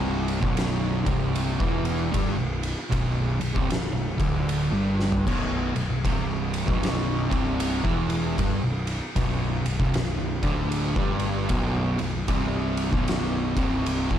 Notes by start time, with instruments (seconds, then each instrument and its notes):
Already playing: picked electric bass C1, distorted electric guitar C2 C3
0.28 ride
0.41 picked electric bass B0, distorted electric guitar B1 B2, kick
0.57 snare, ride
1.05 picked electric bass C1, distorted electric guitar C2 C3, kick, ride
1.35 ride
1.59 picked electric bass E1, distorted electric guitar E2 E3, kick
1.85 ride
2.12 picked electric bass G1, distorted electric guitar G2 G3, kick, ride
2.36 picked electric bass B0, distorted electric guitar B1
2.63 ride
2.90 picked electric bass B0, distorted electric guitar B1 B2, kick, ride
3.40 picked electric bass B0, distorted electric guitar B1, ride
3.54 picked electric bass C1, distorted electric guitar C2 C3, kick
3.70 picked electric bass B0, distorted electric guitar B1, snare, ride
3.93 picked electric bass B0, distorted electric guitar B1
4.18 picked electric bass D1, distorted electric guitar D2 D3, kick, ride
4.49 ride
4.71 picked electric bass G1, distorted electric guitar G2 G3
5.00 snare
5.12 floor tom
5.26 picked electric bass B0, distorted electric guitar B1 B2, kick, crash
5.74 picked electric bass B0, distorted electric guitar B1, ride
5.89 picked electric bass B0, distorted electric guitar B1
6.04 picked electric bass C1, distorted electric guitar C2 C3, kick, ride
6.54 ride
6.67 picked electric bass B0, distorted electric guitar B1 B2, kick
6.83 snare, ride
7.30 picked electric bass C1, distorted electric guitar C2 C3, kick, ride
7.60 ride
7.83 picked electric bass E1, distorted electric guitar E2 E3, kick
8.10 ride
8.37 picked electric bass G1, distorted electric guitar G2 G3, kick, ride
8.62 picked electric bass B0, distorted electric guitar B1
8.87 ride
9.16 picked electric bass B0, distorted electric guitar B1 B2, kick, ride
9.64 picked electric bass B0, distorted electric guitar B1, ride
9.79 picked electric bass C1, distorted electric guitar C2 C3, kick
9.94 picked electric bass B0, distorted electric guitar B1, snare, ride
10.18 picked electric bass B0, distorted electric guitar B1
10.43 picked electric bass D1, distorted electric guitar D2 D3, kick, ride
10.72 ride
10.96 picked electric bass G1, distorted electric guitar G2 G3, kick
11.20 ride
11.49 picked electric bass B0, distorted electric guitar B1 B2, kick, ride
11.99 picked electric bass B0, distorted electric guitar B1, ride
12.13 picked electric bass B0, distorted electric guitar B1
12.28 picked electric bass C1, distorted electric guitar C2 C3, kick, ride
12.77 ride
12.91 picked electric bass B0, distorted electric guitar B1 B2, kick
13.08 snare, ride
13.56 picked electric bass C1, distorted electric guitar C2 C3, kick, ride
13.86 ride
14.10 picked electric bass E1, distorted electric guitar E2 E3, kick